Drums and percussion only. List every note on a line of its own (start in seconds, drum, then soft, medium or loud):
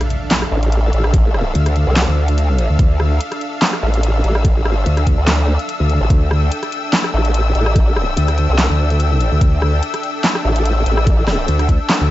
0.01 cross-stick medium
0.01 closed hi-hat medium
0.10 closed hi-hat medium
0.31 snare loud
0.31 clap medium
0.31 closed hi-hat medium
0.42 cross-stick medium
0.63 closed hi-hat medium
0.72 closed hi-hat medium
0.93 closed hi-hat medium
1.04 cross-stick medium
1.14 kick loud
1.14 closed hi-hat medium
1.34 cross-stick medium
1.55 closed hi-hat medium
1.66 cross-stick medium
1.66 closed hi-hat medium
1.76 closed hi-hat medium
1.96 snare loud
1.96 clap loud
1.96 closed hi-hat medium
2.28 closed hi-hat medium
2.38 closed hi-hat medium
2.59 closed hi-hat medium
2.79 kick loud
2.79 closed hi-hat medium
3.00 cross-stick medium
3.21 closed hi-hat medium
3.32 cross-stick soft
3.32 closed hi-hat medium
3.41 closed hi-hat medium
3.62 snare loud
3.62 clap medium
3.62 closed hi-hat medium
3.73 cross-stick medium
3.94 closed hi-hat medium
4.03 closed hi-hat medium
4.24 closed hi-hat medium
4.35 cross-stick medium
4.45 kick loud
4.45 closed hi-hat medium
4.65 cross-stick medium
4.86 closed hi-hat medium
4.97 cross-stick medium
4.97 closed hi-hat soft
5.07 kick medium
5.07 closed hi-hat medium
5.27 snare loud
5.27 clap medium
5.27 closed hi-hat medium
5.59 closed hi-hat medium
5.69 closed hi-hat medium
5.90 closed hi-hat soft
6.10 kick loud
6.10 closed hi-hat medium
6.31 cross-stick medium
6.52 closed hi-hat medium
6.63 cross-stick medium
6.63 closed hi-hat medium
6.72 closed hi-hat medium
6.93 snare loud
6.93 clap medium
6.93 closed hi-hat medium
7.04 cross-stick medium
7.25 closed hi-hat medium
7.34 closed hi-hat medium
7.55 closed hi-hat medium
7.66 cross-stick medium
7.76 kick loud
7.76 closed hi-hat medium
7.96 cross-stick medium
8.17 closed hi-hat medium
8.28 cross-stick medium
8.28 closed hi-hat medium
8.38 closed hi-hat medium
8.58 snare loud
8.58 clap medium
8.58 closed hi-hat medium
8.90 closed hi-hat medium
9.00 closed hi-hat medium
9.21 closed hi-hat medium
9.41 kick loud
9.41 closed hi-hat medium
9.62 cross-stick medium
9.83 closed hi-hat medium
9.94 cross-stick medium
9.94 closed hi-hat medium
10.03 closed hi-hat medium
10.24 snare loud
10.24 clap medium
10.24 closed hi-hat medium
10.35 cross-stick medium
10.56 closed hi-hat medium
10.65 closed hi-hat medium
10.86 closed hi-hat medium
10.97 cross-stick medium
11.07 kick loud
11.07 closed hi-hat medium
11.28 cross-stick medium
11.28 snare medium
11.48 closed hi-hat medium
11.59 cross-stick medium
11.59 closed hi-hat medium
11.69 kick medium
11.69 closed hi-hat medium
11.90 snare loud
11.90 clap medium
11.90 closed hi-hat medium